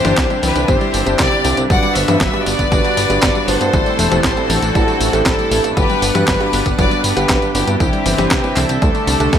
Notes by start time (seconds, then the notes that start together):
Already playing: D3 G3 C4 D4 E4 G4 C5
0.05 G1 C3 G3 D4 E4 C5, snare, closed hi-hat, high tom, tambourine
0.17 C2 E3, kick, snare, clap, closed hi-hat, tambourine
0.30 C3 G3 D4 E4 C5, closed hi-hat, tambourine
0.43 C2 C4 G4 B4, open hi-hat, high tom, tambourine
0.56 C2 D4, closed hi-hat, tambourine
0.68 G1 C3 E3 G3 D4 E4 G4 C5, kick, closed hi-hat, tambourine
0.81 G3, closed hi-hat, tambourine
0.94 G1 E3, open hi-hat, tambourine
1.06 G1 C3 G3 D4 E4 C5, closed hi-hat, tambourine
1.19 C2 G4 C5 D5, kick, snare, clap, closed hi-hat, tambourine
1.32 E4, closed hi-hat, tambourine
1.44 C2 G2 G3 C4 D4 E4 C5, open hi-hat, tambourine
1.57 C2 C4, closed hi-hat, tambourine
1.70 G1 G2 F#3 G3 B3 D4 F#4 B4 D5 F#5, kick, closed hi-hat, tambourine
1.83 G3, closed hi-hat, tambourine
1.95 G1 B3 C5 E5, open hi-hat, tambourine
2.08 G2 G3 B3 D4 F#4 B4, closed hi-hat, high tom, tambourine
2.21 G1 F#3 B4 E5, kick, snare, clap, closed hi-hat, tambourine
2.33 G2 G3 D4 F#4 B4, closed hi-hat, tambourine
2.46 G1 B3 B4 D5, open hi-hat, tambourine
2.59 G1 B3, kick, closed hi-hat, tambourine
2.72 G1 G2 F#3 G3 D4 F#4 B4, kick, closed hi-hat, tambourine
2.84 G3, closed hi-hat, tambourine
2.97 G1 B3, open hi-hat, tambourine
3.10 G1 G2 G3 B3 D4 F#4 B4, closed hi-hat, tambourine
3.22 G1 F#3, kick, snare, clap, closed hi-hat, tambourine
3.35 G3, closed hi-hat, tambourine
3.48 G1 A2 G3 B3 D4 F#4 A4 B4 C5, open hi-hat, tambourine
3.61 G2 B3, closed hi-hat, tambourine
3.73 A1 A2 E3 G3 A3 C4 E4 A4, kick, closed hi-hat, tambourine
3.86 G3, closed hi-hat, tambourine
3.99 E1 A3, open hi-hat, high tom, tambourine
4.11 E1 A2 G3 A3 C4 E4 A4, closed hi-hat, high tom, tambourine
4.24 A1 E3 A4 C5, kick, snare, clap, closed hi-hat, tambourine
4.37 A2 G3 C4 E4 A4, closed hi-hat, tambourine
4.50 A1 A3 F#4 A4, open hi-hat, high tom, tambourine
4.62 A1 A3, closed hi-hat, tambourine
4.75 A1 A2 E3 G3 C4 E4 A4, kick, closed hi-hat, tambourine
4.88 G3, closed hi-hat, tambourine
5.00 A1 A3, open hi-hat, tambourine
5.13 A1 A2 G3 A3 C4 E4 A4, closed hi-hat, tambourine
5.26 A1 E3 E4 A4, kick, snare, clap, closed hi-hat, tambourine
5.39 G3, closed hi-hat, tambourine
5.51 A1 G2 G3 A3 C4 E4 A4, open hi-hat, tambourine
5.64 A1 A3, closed hi-hat, tambourine
5.77 G1 G2 D3 F#3 G3 B3 D4 G4 B4 F#5, kick, closed hi-hat, tambourine
5.89 G3, closed hi-hat, tambourine
6.02 G1 B3, open hi-hat, tambourine
6.15 G2 G3 B3 D4 F#4 B4, closed hi-hat, high tom, tambourine
6.28 G1 F#3 G4 B4, kick, snare, clap, closed hi-hat, tambourine
6.40 G2 G3 D4 F#4 B4, closed hi-hat, tambourine
6.53 G1 B3, open hi-hat, tambourine
6.66 G1 B3, kick, closed hi-hat, tambourine
6.78 G1 G2 F#3 G3 D4 F#4 B4 D5, kick, closed hi-hat, tambourine
6.91 G3, closed hi-hat, tambourine
7.04 G1 B3 G4 B4, open hi-hat, tambourine
7.17 G1 G2 G3 B3 D4 B4 F#5, closed hi-hat, tambourine
7.29 G1 F#3, kick, snare, clap, closed hi-hat, tambourine
7.42 G3, closed hi-hat, tambourine
7.55 G1 C3 G3 B3 D4 E4 F#4 G4 B4, open hi-hat, tambourine
7.68 G2 B3, closed hi-hat, tambourine
7.80 C2 C3 E3 G3 C4 D4 E4 G4 C5, kick, closed hi-hat, tambourine
7.93 G3, closed hi-hat, tambourine
8.06 G1 C4 G4 B4, open hi-hat, high tom, tambourine
8.18 G1 C3 G3 C4 D4 E4 C5, snare, closed hi-hat, high tom, tambourine
8.31 C2 E3, kick, snare, clap, closed hi-hat, tambourine
8.44 C3 G3 D4 E4 C5, closed hi-hat, tambourine
8.56 C2 C4 D4 A4, clap, open hi-hat, high tom, tambourine
8.69 C2 C4, closed hi-hat, tambourine
8.82 D2 D3 G3 A3 D4 A4, kick, closed hi-hat, tambourine
8.95 A3, closed hi-hat, tambourine
9.07 C2 D4, open hi-hat, tambourine
9.20 C2 D3 G3 A3 D4 A4, closed hi-hat, tambourine
9.33 D2 G3, kick, snare, closed hi-hat, tambourine